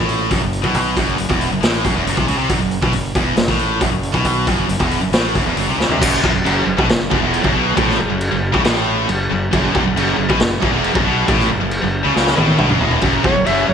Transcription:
Already playing: fingered electric bass A1, distorted electric guitar A2
0.09 open hi-hat
0.30 fingered electric bass F#1, distorted electric guitar F#2, kick, open hi-hat
0.41 fingered electric bass F#1, distorted electric guitar F#2
0.53 open hi-hat
0.63 fingered electric bass B1, distorted electric guitar B2, kick
0.74 kick, open hi-hat
0.96 fingered electric bass F#1, distorted electric guitar F#2, kick, open hi-hat
1.18 fingered electric bass F#1, distorted electric guitar F#2, open hi-hat
1.29 fingered electric bass E1, distorted electric guitar E2, kick
1.41 open hi-hat
1.50 fingered electric bass F#1, distorted electric guitar F#2
1.61 fingered electric bass A1, distorted electric guitar A2, snare, open hi-hat
1.84 fingered electric bass F#1, distorted electric guitar F#2, kick, open hi-hat
1.95 fingered electric bass E1, distorted electric guitar E2
2.05 fingered electric bass F#1, distorted electric guitar F#2, open hi-hat
2.16 fingered electric bass C2, distorted electric guitar C3, kick
2.28 fingered electric bass C#2, distorted electric guitar C#3, open hi-hat
2.38 fingered electric bass C2, distorted electric guitar C3
2.49 fingered electric bass F#1, distorted electric guitar F#2, kick, open hi-hat
2.60 fingered electric bass F#1, distorted electric guitar F#2
2.71 open hi-hat
2.82 fingered electric bass B1, distorted electric guitar B2, kick
2.93 fingered electric bass F#1, distorted electric guitar F#2, open hi-hat
3.15 fingered electric bass E1, distorted electric guitar E2, kick, open hi-hat
3.37 fingered electric bass F#1, distorted electric guitar F#2, snare, open hi-hat
3.48 fingered electric bass A1, distorted electric guitar A2, kick, snare
3.59 open hi-hat
3.81 fingered electric bass F#1, distorted electric guitar F#2, kick, open hi-hat
3.92 fingered electric bass F#1, distorted electric guitar F#2
4.03 open hi-hat
4.14 fingered electric bass B1, distorted electric guitar B2, kick
4.25 kick, open hi-hat
4.47 fingered electric bass F#1, distorted electric guitar F#2, kick, open hi-hat
4.69 fingered electric bass F#1, distorted electric guitar F#2, open hi-hat
4.80 fingered electric bass E1, distorted electric guitar E2, kick
4.91 open hi-hat
5.01 fingered electric bass F#1, distorted electric guitar F#2
5.12 fingered electric bass A1, distorted electric guitar A2, snare, open hi-hat
5.35 fingered electric bass F#1, distorted electric guitar F#2, kick, open hi-hat
5.46 fingered electric bass E1, distorted electric guitar E2
5.56 fingered electric bass F#1, distorted electric guitar F#2, open hi-hat
5.67 fingered electric bass C2, distorted electric guitar C3
5.77 fingered electric bass C#2, distorted electric guitar C#3, snare
5.88 fingered electric bass C2, distorted electric guitar C3, floor tom
6.00 fingered electric bass F#1, distorted electric guitar F#2, kick, crash
6.21 fingered electric bass E1, distorted electric guitar E2, kick
6.34 fingered electric bass F#1, distorted electric guitar F#2
6.44 fingered electric bass F#1, distorted electric guitar F#2, crash
6.66 fingered electric bass F#1, distorted electric guitar F#2
6.77 fingered electric bass B1, distorted electric guitar B2, kick
6.89 fingered electric bass F#1, distorted electric guitar F#2, snare, crash
7.11 fingered electric bass F#1, distorted electric guitar F#2, kick
7.21 fingered electric bass E1, distorted electric guitar E2
7.34 crash
7.42 fingered electric bass F#1, distorted electric guitar F#2, kick
7.54 fingered electric bass B1, distorted electric guitar B2
7.76 fingered electric bass A1, distorted electric guitar A2, kick, crash
7.90 snare
7.98 fingered electric bass F#1, distorted electric guitar F#2
8.10 fingered electric bass F#1, distorted electric guitar F#2
8.21 crash
8.31 fingered electric bass F#1, distorted electric guitar F#2
8.53 fingered electric bass C#2, distorted electric guitar C#3, kick
8.65 fingered electric bass A1, distorted electric guitar A2, snare, crash
9.08 fingered electric bass F#1, distorted electric guitar F#2, crash
9.31 fingered electric bass F#1, distorted electric guitar F#2
9.53 fingered electric bass F#1, distorted electric guitar F#2, kick, crash
9.75 fingered electric bass E1, distorted electric guitar E2, kick
9.85 fingered electric bass F#1, distorted electric guitar F#2
9.96 fingered electric bass F#1, distorted electric guitar F#2, crash
10.18 fingered electric bass F#1, distorted electric guitar F#2
10.29 fingered electric bass B1, distorted electric guitar B2, kick
10.40 fingered electric bass F#1, distorted electric guitar F#2, snare, crash
10.62 fingered electric bass F#1, distorted electric guitar F#2, kick
10.73 fingered electric bass E1, distorted electric guitar E2
10.84 crash
10.95 fingered electric bass F#1, distorted electric guitar F#2, kick
11.06 fingered electric bass B1, distorted electric guitar B2
11.27 fingered electric bass A1, distorted electric guitar A2, kick, crash
11.39 snare
11.50 fingered electric bass F#1, distorted electric guitar F#2
11.60 fingered electric bass F#1, distorted electric guitar F#2
11.71 crash
11.82 fingered electric bass F#1, distorted electric guitar F#2
12.03 fingered electric bass C#2, distorted electric guitar C#3
12.14 fingered electric bass C#2, distorted electric guitar C#3, snare
12.27 snare
12.36 fingered electric bass A1, distorted electric guitar A2, high tom
12.47 high tom
12.58 fingered electric bass B1, distorted electric guitar B2, mid tom
12.68 fingered electric bass F#1, distorted electric guitar F#2, mid tom
12.79 fingered electric bass E1, distorted electric guitar E2, floor tom
12.91 floor tom
13.01 fingered electric bass F#1, distorted electric guitar F#2, kick, crash
13.23 fingered electric bass E1, distorted electric guitar E2, clarinet C#5, kick
13.34 fingered electric bass F#1, distorted electric guitar F#2
13.45 fingered electric bass F#1, distorted electric guitar F#2, clarinet E5, crash
13.68 fingered electric bass F#1, distorted electric guitar F#2, clarinet C#5

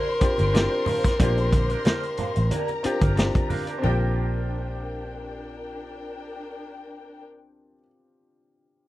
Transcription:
Already playing: grand piano C4 D4 F4 G4, alto saxophone A#4, string section C5 C6
0.20 grand piano C4 D4 F4 G4, muted clean electric guitar stroke, muted fingered electric bass stroke, kick, closed hi-hat
0.37 fingered electric bass G1, clean electric guitar D4 G4 A#4 D5, closed hi-hat, high conga
0.53 grand piano C4 D4 F4 G4, clean electric guitar D4 G4 A#4 D5, snare, closed hi-hat
0.70 muted clean electric guitar stroke
0.85 clean electric guitar D4 G4 A#4 F5, open hi-hat, high conga, low conga
1.03 muted clean electric guitar stroke, kick, snare, closed hi-hat
1.18 fingered electric bass A#1, grand piano C4 D4 F4 G4, clean electric guitar D4 G4 A#4 D5, kick, closed hi-hat, low conga
1.36 muted clean electric guitar stroke, closed hi-hat
1.51 muted clean electric guitar stroke, kick, closed hi-hat, high conga
1.69 clean electric guitar D4 G4 A#4 D5, closed hi-hat
1.84 clean electric guitar D4 G4 A#4 D5, snare, closed hi-hat, muted conga, high conga
2.02 muted clean electric guitar stroke, closed hi-hat
2.17 clean electric guitar D4 G4 A#4 F5, muted fingered electric bass stroke, closed hi-hat, low conga
2.35 fingered electric bass A1, muted clean electric guitar stroke, closed hi-hat
2.50 clean electric guitar D4 G4 A#4 D5, string section A#4 A#5, closed hi-hat, high conga
2.68 closed hi-hat, muted conga
2.83 grand piano C4 D4 F4 G4, muted clean electric guitar stroke, muted fingered electric bass stroke, closed hi-hat
3.01 fingered electric bass G1, clean electric guitar D4 G4 A#4 D5, kick, closed hi-hat, high conga
3.16 grand piano C4 D4 F4 G4, muted clean electric guitar stroke, snare, closed hi-hat
3.33 muted clean electric guitar stroke, kick, closed hi-hat, high conga
3.49 clean electric guitar D4 G4 A#4 F5, open hi-hat, high conga, low conga
3.67 clean electric guitar D4 G4 A#4 D5, closed hi-hat
3.78 grand piano C4 D4, clean electric guitar D4
3.83 fingered electric bass A#1, string section D4 A#4 G5, grand piano F4, clean electric guitar G4 A#4 D5, high conga
3.89 grand piano G4

